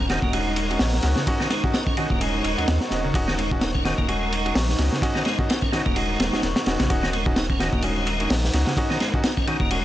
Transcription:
Already playing: sub bass D#1, ambient pad D#4 A#4 F#5 C#6
0.10 tonewheel organ D#3, grand piano C#4 D#4 F#4, snare, ride
0.22 sub bass D#1, tonewheel organ A#3, kick
0.33 tonewheel organ G#3, grand piano C#4 D#4 F#4, ride
0.56 ride
0.70 grand piano C#4 D#4 F#4, ride
0.79 sub bass A#1, snare, open hi-hat
0.94 snare
1.03 sub bass C#2, grand piano C#4 D#4 F#4, snare, ride
1.16 tonewheel organ C#3, snare
1.27 grand piano C#4 D#4 F#4, kick, ride
1.40 tonewheel organ D#3, snare
1.50 tonewheel organ G#3, snare, ride
1.64 grand piano C#4 D#4 F#4, kick
1.74 tonewheel organ D#4, snare, ride
1.87 tonewheel organ C#4, kick
1.97 tonewheel organ D#3, grand piano C#4 D#4 F#4, ride
2.10 sub bass D#1, tonewheel organ A#3, kick
2.21 tonewheel organ G#3, grand piano C#4 D#4 F#4, ride
2.44 sub bass D#1, ride
2.58 sub bass D#2, grand piano C#4 D#4 F#4, ride
2.68 sub bass D#2, snare, ride
2.81 snare
2.90 sub bass D#1, grand piano C#4 D#4 F#4, snare, ride
3.04 tonewheel organ C#3
3.14 sub bass D#1, grand piano C#4 D#4 F#4, kick, ride
3.28 tonewheel organ D#3, snare
3.38 tonewheel organ G#3, ride
3.51 grand piano C#4 D#4 F#4, kick
3.61 tonewheel organ D#4, snare, ride
3.74 tonewheel organ C#4, kick
3.85 tonewheel organ D#3, grand piano C#4 D#4 F#4, snare, ride
3.98 sub bass D#1, tonewheel organ A#3, kick
4.08 tonewheel organ G#3, grand piano C#4 D#4 F#4, ride
4.32 ride
4.45 grand piano C#4 D#4 F#4, ride
4.55 sub bass A#1, snare, open hi-hat
4.69 snare
4.78 sub bass C#2, grand piano C#4 D#4 F#4, snare, ride
4.92 tonewheel organ C#3, snare
5.02 grand piano C#4 D#4 F#4, kick, ride
5.15 tonewheel organ D#3, snare
5.25 tonewheel organ G#3, snare, ride
5.39 grand piano C#4 D#4 F#4, kick
5.49 tonewheel organ D#4, snare, ride
5.62 tonewheel organ C#4, kick
5.72 tonewheel organ D#3, grand piano C#4 D#4 F#4, snare, ride
5.86 sub bass D#1, tonewheel organ A#3, kick
5.96 tonewheel organ G#3, grand piano C#4 D#4 F#4, ride
6.20 sub bass D#1, snare, ride
6.33 sub bass D#1, grand piano C#4 D#4 F#4, snare
6.43 sub bass D#1, snare, ride
6.56 snare, ride
6.66 sub bass D#1, grand piano C#4 D#4 F#4, snare, ride
6.79 sub bass A#1, tonewheel organ C#3, snare, ride
6.90 sub bass D#1, grand piano C#4 D#4 F#4, ambient pad A#5, kick, ride
7.03 tonewheel organ D#3, snare
7.13 tonewheel organ G#3, ride
7.26 grand piano C#4 D#4 F#4, kick
7.36 tonewheel organ D#4, snare, ride
7.50 tonewheel organ C#4, kick
7.60 tonewheel organ D#3, grand piano C#4 D#4 F#4, snare, ride
7.73 sub bass D#1, tonewheel organ A#3, kick
7.82 tonewheel organ G#3, grand piano C#4 D#4 F#4, ride
8.07 ride
8.20 grand piano C#4 D#4 F#4, ride
8.30 sub bass A#1, snare, open hi-hat
8.44 snare
8.53 sub bass C#2, grand piano C#4 D#4 F#4, snare, ride
8.67 tonewheel organ C#3, snare
8.77 grand piano C#4 D#4 F#4, kick, ride
8.90 tonewheel organ D#3, snare
9.00 tonewheel organ G#3, snare, ride
9.14 grand piano C#4 D#4 F#4, kick
9.24 tonewheel organ D#4, snare, ride
9.37 tonewheel organ C#4, kick
9.47 tonewheel organ D#3, grand piano C#4 D#4 F#4, ride
9.60 sub bass D#1, tonewheel organ A#3, kick
9.71 tonewheel organ G#3, grand piano C#4 D#4 F#4, ride

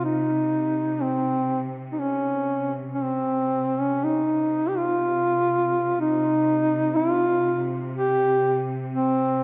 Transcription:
Already playing: cello section C3
0.04 duduk D#4
1.02 duduk C4
1.92 duduk D#4
2.00 duduk C#4
2.94 duduk C#4
3.01 cello section C3, duduk C4
3.80 duduk C#4
4.04 duduk D#4
4.69 duduk G4
4.78 duduk F4
6.00 duduk D#4
6.96 duduk F4
7.94 duduk G4
8.92 duduk C4

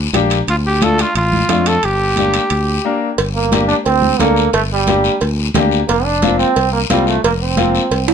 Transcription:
0.13 fingered electric bass A#1, upright piano A#3 D4 G4, high conga, high timbale, short guiro
0.30 high timbale, short guiro
0.47 fingered electric bass D2, trumpet F4, high timbale, long guiro
0.66 trumpet G4
0.81 upright piano A3 D4 F4, trumpet A4, high conga, high timbale, short guiro
0.98 trumpet F4, high timbale, short guiro
1.15 fingered electric bass A1, trumpet F4, high timbale, long guiro
1.32 high conga
1.49 fingered electric bass F2, upright piano A3 D4 F4, high conga, high timbale, low timbale, short guiro
1.66 trumpet A4, high timbale, short guiro
1.83 fingered electric bass G1, trumpet G4, high timbale, long guiro
2.16 upright piano A#3 D4 G4, high conga, high timbale, short guiro
2.34 high timbale, short guiro
2.50 fingered electric bass D2, high timbale, long guiro
2.85 upright piano A#3 D4 A#4
3.18 fingered electric bass G1, cowbell, long guiro
3.35 trombone A#3
3.52 upright piano A#3 D4 G4, cowbell, high conga, short guiro
3.68 trombone D4, short guiro
3.85 fingered electric bass D2, trombone C4, cowbell, long guiro
4.02 high conga
4.19 fingered electric bass D2, upright piano A#3 D4 A4, trombone A#3, cowbell, high conga, low timbale, short guiro
4.36 short guiro
4.53 fingered electric bass G1, trombone A3, cowbell, long guiro
4.72 trombone G3
4.87 upright piano A#3 D4 G4, cowbell, high conga, short guiro
5.04 short guiro
5.21 fingered electric bass D2, cowbell, long guiro
5.54 fingered electric bass D2, upright piano A#3 D4 G4, cowbell, high conga, low conga, low timbale, short guiro
5.71 short guiro
5.88 fingered electric bass F1, trombone A#3, cowbell, long guiro
6.05 trombone D4
6.22 upright piano A#3 C4 F4, cowbell, high conga, short guiro
6.39 trombone C4, short guiro
6.56 fingered electric bass C2, cowbell, long guiro
6.73 trombone A#3
6.90 fingered electric bass C2, trombone G3, upright piano A#3 C4 F4, cowbell, high conga, short guiro
7.07 trombone A3, short guiro
7.24 fingered electric bass F1, trombone A#3, cowbell, long guiro
7.41 trombone C4
7.57 upright piano A#3 C4 F4, cowbell, high conga, short guiro
7.75 short guiro
7.91 fingered electric bass C2, cowbell, long guiro
8.08 high timbale

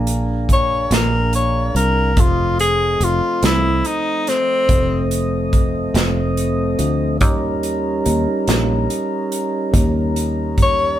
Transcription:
Already playing: fingered electric bass A#1, tonewheel organ D4 F4 G#4 A#4
0.07 closed hi-hat
0.49 tenor saxophone C#5, kick, closed hi-hat
0.91 fingered electric bass A#1, tenor saxophone A#4, snare, closed hi-hat
1.33 tenor saxophone C#5, closed hi-hat
1.75 fingered electric bass C2, tenor saxophone A#4, closed hi-hat
2.17 fingered electric bass F1, tonewheel organ F3 A3 C4 D#5, tenor saxophone F4, kick, closed hi-hat
2.59 tenor saxophone G#4, closed hi-hat
3.00 fingered electric bass F1, tenor saxophone F4, closed hi-hat
3.43 fingered electric bass C2, tenor saxophone E4, snare, closed hi-hat
3.85 tenor saxophone D#4, closed hi-hat
4.27 tenor saxophone C4, snare, closed hi-hat
4.69 fingered electric bass F1, kick, closed hi-hat
5.11 closed hi-hat
5.53 kick, closed hi-hat
5.94 fingered electric bass F1, snare, closed hi-hat
6.37 closed hi-hat
6.79 fingered electric bass D2, closed hi-hat
7.20 fingered electric bass D#2, tonewheel organ G3 C#4 D#4 A#4, kick, closed hi-hat
7.63 closed hi-hat
8.06 fingered electric bass D#2, closed hi-hat
8.48 fingered electric bass A#1, snare, closed hi-hat
8.90 closed hi-hat
9.32 closed hi-hat
9.73 fingered electric bass D#2, kick, closed hi-hat
10.16 closed hi-hat
10.58 kick, closed hi-hat
10.63 tenor saxophone C#5

